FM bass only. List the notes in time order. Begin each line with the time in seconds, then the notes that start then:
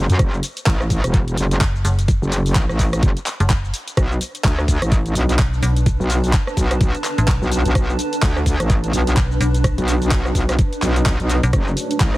1.61 F#1
1.85 F#1
3.40 F#1
5.39 B1
5.63 B1
7.18 A1
7.28 B1
9.17 B1
9.41 B1
11.43 B1